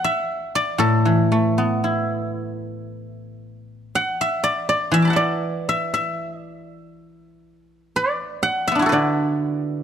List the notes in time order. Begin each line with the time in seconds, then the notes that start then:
Already playing: F#5
0.04 E5
0.55 D5
0.78 A2 A4
1.05 E3
1.32 A3
1.58 B3
1.84 E4
3.95 F#5
4.21 E5
4.44 D5
4.69 D5
4.92 E3 E5
5.02 B5 D6
5.07 F#5 A5
5.13 D5 E5
5.69 E5
5.94 E5
6.41 D5
7.96 D5
8.43 F#5
8.68 E5
8.72 B3 D4
8.79 E4 F#4
8.86 A4 B4
8.92 D3 D5